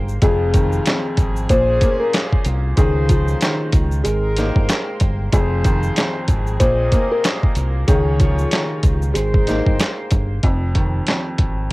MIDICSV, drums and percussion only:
0, 0, Header, 1, 2, 480
1, 0, Start_track
1, 0, Key_signature, -4, "minor"
1, 0, Tempo, 638298
1, 167, Time_signature, 4, 2, 24, 8
1, 8817, End_track
2, 0, Start_track
2, 0, Title_t, "Drums"
2, 65, Note_on_c, 9, 82, 49
2, 141, Note_off_c, 9, 82, 0
2, 164, Note_on_c, 9, 42, 86
2, 165, Note_on_c, 9, 82, 63
2, 167, Note_on_c, 9, 36, 119
2, 240, Note_off_c, 9, 42, 0
2, 240, Note_off_c, 9, 82, 0
2, 243, Note_off_c, 9, 36, 0
2, 405, Note_on_c, 9, 42, 82
2, 408, Note_on_c, 9, 36, 97
2, 409, Note_on_c, 9, 82, 57
2, 480, Note_off_c, 9, 42, 0
2, 483, Note_off_c, 9, 36, 0
2, 484, Note_off_c, 9, 82, 0
2, 546, Note_on_c, 9, 82, 52
2, 621, Note_off_c, 9, 82, 0
2, 644, Note_on_c, 9, 42, 96
2, 648, Note_on_c, 9, 82, 69
2, 656, Note_on_c, 9, 38, 109
2, 665, Note_on_c, 9, 39, 87
2, 719, Note_off_c, 9, 42, 0
2, 723, Note_off_c, 9, 82, 0
2, 732, Note_off_c, 9, 38, 0
2, 740, Note_off_c, 9, 39, 0
2, 881, Note_on_c, 9, 42, 80
2, 885, Note_on_c, 9, 36, 99
2, 891, Note_on_c, 9, 82, 52
2, 957, Note_off_c, 9, 42, 0
2, 960, Note_off_c, 9, 36, 0
2, 966, Note_off_c, 9, 82, 0
2, 1025, Note_on_c, 9, 82, 54
2, 1101, Note_off_c, 9, 82, 0
2, 1123, Note_on_c, 9, 42, 94
2, 1127, Note_on_c, 9, 36, 90
2, 1129, Note_on_c, 9, 82, 67
2, 1198, Note_off_c, 9, 42, 0
2, 1202, Note_off_c, 9, 36, 0
2, 1204, Note_off_c, 9, 82, 0
2, 1361, Note_on_c, 9, 42, 79
2, 1366, Note_on_c, 9, 36, 90
2, 1369, Note_on_c, 9, 82, 49
2, 1437, Note_off_c, 9, 42, 0
2, 1442, Note_off_c, 9, 36, 0
2, 1444, Note_off_c, 9, 82, 0
2, 1606, Note_on_c, 9, 42, 99
2, 1608, Note_on_c, 9, 82, 74
2, 1612, Note_on_c, 9, 38, 121
2, 1621, Note_on_c, 9, 39, 95
2, 1681, Note_off_c, 9, 42, 0
2, 1683, Note_off_c, 9, 82, 0
2, 1687, Note_off_c, 9, 38, 0
2, 1696, Note_off_c, 9, 39, 0
2, 1750, Note_on_c, 9, 36, 97
2, 1825, Note_off_c, 9, 36, 0
2, 1840, Note_on_c, 9, 42, 78
2, 1845, Note_on_c, 9, 82, 57
2, 1915, Note_off_c, 9, 42, 0
2, 1920, Note_off_c, 9, 82, 0
2, 2083, Note_on_c, 9, 42, 86
2, 2088, Note_on_c, 9, 36, 120
2, 2088, Note_on_c, 9, 82, 64
2, 2159, Note_off_c, 9, 42, 0
2, 2163, Note_off_c, 9, 36, 0
2, 2163, Note_off_c, 9, 82, 0
2, 2324, Note_on_c, 9, 42, 82
2, 2328, Note_on_c, 9, 36, 91
2, 2329, Note_on_c, 9, 82, 57
2, 2399, Note_off_c, 9, 42, 0
2, 2403, Note_off_c, 9, 36, 0
2, 2404, Note_off_c, 9, 82, 0
2, 2466, Note_on_c, 9, 82, 52
2, 2541, Note_off_c, 9, 82, 0
2, 2562, Note_on_c, 9, 42, 97
2, 2567, Note_on_c, 9, 82, 68
2, 2575, Note_on_c, 9, 38, 111
2, 2583, Note_on_c, 9, 39, 85
2, 2638, Note_off_c, 9, 42, 0
2, 2643, Note_off_c, 9, 82, 0
2, 2650, Note_off_c, 9, 38, 0
2, 2659, Note_off_c, 9, 39, 0
2, 2800, Note_on_c, 9, 42, 81
2, 2805, Note_on_c, 9, 36, 100
2, 2809, Note_on_c, 9, 82, 51
2, 2875, Note_off_c, 9, 42, 0
2, 2880, Note_off_c, 9, 36, 0
2, 2884, Note_off_c, 9, 82, 0
2, 2944, Note_on_c, 9, 82, 52
2, 3019, Note_off_c, 9, 82, 0
2, 3043, Note_on_c, 9, 42, 94
2, 3048, Note_on_c, 9, 82, 68
2, 3118, Note_off_c, 9, 42, 0
2, 3123, Note_off_c, 9, 82, 0
2, 3283, Note_on_c, 9, 42, 80
2, 3288, Note_on_c, 9, 82, 47
2, 3297, Note_on_c, 9, 38, 38
2, 3358, Note_off_c, 9, 42, 0
2, 3363, Note_off_c, 9, 82, 0
2, 3372, Note_off_c, 9, 38, 0
2, 3428, Note_on_c, 9, 36, 92
2, 3503, Note_off_c, 9, 36, 0
2, 3525, Note_on_c, 9, 42, 99
2, 3528, Note_on_c, 9, 82, 73
2, 3532, Note_on_c, 9, 38, 120
2, 3540, Note_on_c, 9, 39, 99
2, 3600, Note_off_c, 9, 42, 0
2, 3603, Note_off_c, 9, 82, 0
2, 3607, Note_off_c, 9, 38, 0
2, 3616, Note_off_c, 9, 39, 0
2, 3760, Note_on_c, 9, 42, 81
2, 3765, Note_on_c, 9, 82, 58
2, 3768, Note_on_c, 9, 36, 99
2, 3835, Note_off_c, 9, 42, 0
2, 3840, Note_off_c, 9, 82, 0
2, 3843, Note_off_c, 9, 36, 0
2, 4004, Note_on_c, 9, 42, 89
2, 4007, Note_on_c, 9, 36, 120
2, 4007, Note_on_c, 9, 82, 66
2, 4079, Note_off_c, 9, 42, 0
2, 4082, Note_off_c, 9, 36, 0
2, 4082, Note_off_c, 9, 82, 0
2, 4244, Note_on_c, 9, 42, 80
2, 4247, Note_on_c, 9, 36, 97
2, 4250, Note_on_c, 9, 82, 57
2, 4319, Note_off_c, 9, 42, 0
2, 4323, Note_off_c, 9, 36, 0
2, 4325, Note_off_c, 9, 82, 0
2, 4384, Note_on_c, 9, 82, 52
2, 4459, Note_off_c, 9, 82, 0
2, 4483, Note_on_c, 9, 42, 95
2, 4487, Note_on_c, 9, 82, 69
2, 4495, Note_on_c, 9, 38, 107
2, 4504, Note_on_c, 9, 39, 86
2, 4558, Note_off_c, 9, 42, 0
2, 4562, Note_off_c, 9, 82, 0
2, 4570, Note_off_c, 9, 38, 0
2, 4579, Note_off_c, 9, 39, 0
2, 4720, Note_on_c, 9, 42, 81
2, 4724, Note_on_c, 9, 36, 99
2, 4730, Note_on_c, 9, 82, 51
2, 4796, Note_off_c, 9, 42, 0
2, 4799, Note_off_c, 9, 36, 0
2, 4805, Note_off_c, 9, 82, 0
2, 4864, Note_on_c, 9, 82, 53
2, 4939, Note_off_c, 9, 82, 0
2, 4962, Note_on_c, 9, 42, 93
2, 4966, Note_on_c, 9, 36, 91
2, 4967, Note_on_c, 9, 82, 69
2, 5037, Note_off_c, 9, 42, 0
2, 5041, Note_off_c, 9, 36, 0
2, 5042, Note_off_c, 9, 82, 0
2, 5202, Note_on_c, 9, 42, 81
2, 5205, Note_on_c, 9, 36, 93
2, 5207, Note_on_c, 9, 82, 48
2, 5277, Note_off_c, 9, 42, 0
2, 5281, Note_off_c, 9, 36, 0
2, 5282, Note_off_c, 9, 82, 0
2, 5444, Note_on_c, 9, 42, 103
2, 5446, Note_on_c, 9, 82, 76
2, 5451, Note_on_c, 9, 38, 118
2, 5459, Note_on_c, 9, 39, 98
2, 5519, Note_off_c, 9, 42, 0
2, 5522, Note_off_c, 9, 82, 0
2, 5526, Note_off_c, 9, 38, 0
2, 5535, Note_off_c, 9, 39, 0
2, 5589, Note_on_c, 9, 36, 98
2, 5664, Note_off_c, 9, 36, 0
2, 5679, Note_on_c, 9, 42, 76
2, 5685, Note_on_c, 9, 82, 58
2, 5754, Note_off_c, 9, 42, 0
2, 5761, Note_off_c, 9, 82, 0
2, 5924, Note_on_c, 9, 42, 89
2, 5926, Note_on_c, 9, 82, 64
2, 5927, Note_on_c, 9, 36, 116
2, 5999, Note_off_c, 9, 42, 0
2, 6001, Note_off_c, 9, 82, 0
2, 6002, Note_off_c, 9, 36, 0
2, 6164, Note_on_c, 9, 42, 79
2, 6167, Note_on_c, 9, 36, 92
2, 6168, Note_on_c, 9, 82, 56
2, 6239, Note_off_c, 9, 42, 0
2, 6242, Note_off_c, 9, 36, 0
2, 6243, Note_off_c, 9, 82, 0
2, 6306, Note_on_c, 9, 82, 51
2, 6382, Note_off_c, 9, 82, 0
2, 6403, Note_on_c, 9, 42, 96
2, 6407, Note_on_c, 9, 82, 68
2, 6415, Note_on_c, 9, 38, 106
2, 6424, Note_on_c, 9, 39, 86
2, 6478, Note_off_c, 9, 42, 0
2, 6482, Note_off_c, 9, 82, 0
2, 6490, Note_off_c, 9, 38, 0
2, 6499, Note_off_c, 9, 39, 0
2, 6641, Note_on_c, 9, 42, 82
2, 6644, Note_on_c, 9, 36, 105
2, 6649, Note_on_c, 9, 82, 52
2, 6716, Note_off_c, 9, 42, 0
2, 6719, Note_off_c, 9, 36, 0
2, 6724, Note_off_c, 9, 82, 0
2, 6785, Note_on_c, 9, 82, 52
2, 6860, Note_off_c, 9, 82, 0
2, 6883, Note_on_c, 9, 42, 93
2, 6888, Note_on_c, 9, 82, 69
2, 6958, Note_off_c, 9, 42, 0
2, 6963, Note_off_c, 9, 82, 0
2, 7025, Note_on_c, 9, 36, 102
2, 7100, Note_off_c, 9, 36, 0
2, 7122, Note_on_c, 9, 42, 79
2, 7129, Note_on_c, 9, 82, 50
2, 7136, Note_on_c, 9, 38, 39
2, 7197, Note_off_c, 9, 42, 0
2, 7204, Note_off_c, 9, 82, 0
2, 7211, Note_off_c, 9, 38, 0
2, 7268, Note_on_c, 9, 36, 91
2, 7343, Note_off_c, 9, 36, 0
2, 7366, Note_on_c, 9, 42, 106
2, 7366, Note_on_c, 9, 82, 75
2, 7373, Note_on_c, 9, 38, 124
2, 7382, Note_on_c, 9, 39, 98
2, 7441, Note_off_c, 9, 82, 0
2, 7442, Note_off_c, 9, 42, 0
2, 7448, Note_off_c, 9, 38, 0
2, 7457, Note_off_c, 9, 39, 0
2, 7600, Note_on_c, 9, 42, 79
2, 7604, Note_on_c, 9, 82, 59
2, 7608, Note_on_c, 9, 36, 101
2, 7675, Note_off_c, 9, 42, 0
2, 7679, Note_off_c, 9, 82, 0
2, 7683, Note_off_c, 9, 36, 0
2, 7844, Note_on_c, 9, 42, 83
2, 7847, Note_on_c, 9, 36, 112
2, 7919, Note_off_c, 9, 42, 0
2, 7922, Note_off_c, 9, 36, 0
2, 8085, Note_on_c, 9, 42, 77
2, 8088, Note_on_c, 9, 36, 88
2, 8160, Note_off_c, 9, 42, 0
2, 8163, Note_off_c, 9, 36, 0
2, 8323, Note_on_c, 9, 42, 90
2, 8335, Note_on_c, 9, 38, 104
2, 8344, Note_on_c, 9, 39, 80
2, 8398, Note_off_c, 9, 42, 0
2, 8410, Note_off_c, 9, 38, 0
2, 8419, Note_off_c, 9, 39, 0
2, 8561, Note_on_c, 9, 42, 75
2, 8565, Note_on_c, 9, 36, 96
2, 8637, Note_off_c, 9, 42, 0
2, 8640, Note_off_c, 9, 36, 0
2, 8817, End_track
0, 0, End_of_file